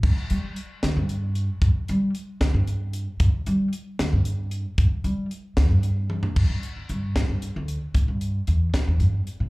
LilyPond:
<<
  \new Staff \with { instrumentName = "Upright bass" } { \clef bass \time 6/8 \key a \mixolydian \tempo 4. = 76 g,16 r16 g8 r8 d,16 g,4~ g,16 | g,16 r16 g8 r8 d,16 g,4~ g,16 | g,16 r16 g8 r8 d,16 g,4~ g,16 | g,16 r16 g8 r8 d,16 g,4~ g,16 |
g,16 g,16 r8 g,8. g,8 d,8 r16 | a,16 g,8. e,8 r16 e,16 g,8 r16 a,16 | }
  \new DrumStaff \with { instrumentName = "Drums" } \drummode { \time 6/8 <cymc bd>8 hh8 hh8 <hh sn>8 hh8 hh8 | <hh bd>8 hh8 hh8 <hh bd sn>8 hh8 hh8 | <hh bd>8 hh8 hh8 <hh sn>8 hh8 hh8 | <hh bd>8 hh8 hh8 <hh bd sn>8 hh8 tommh16 tomfh16 |
<cymc bd>8 hh8 hh8 <hh bd sn>8 hh8 hh8 | <hh bd>8 hh8 hh8 <hh bd sn>8 hh8 hh8 | }
>>